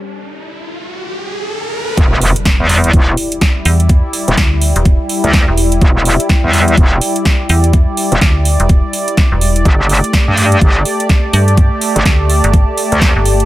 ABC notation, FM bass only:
X:1
M:4/4
L:1/16
Q:"Swing 16ths" 1/4=125
K:Em
V:1 name="FM bass" clef=bass
z16 | z12 z2 E,,2- | E,, z3 D,,3 E,,,2 z4 E,,,3 | z12 z2 E,,2- |
E,, z3 D,,3 E,,,2 z4 E,,,3 | z12 z2 G,,2- | G,, z3 D,,3 G,,,2 z4 G,,,3 |]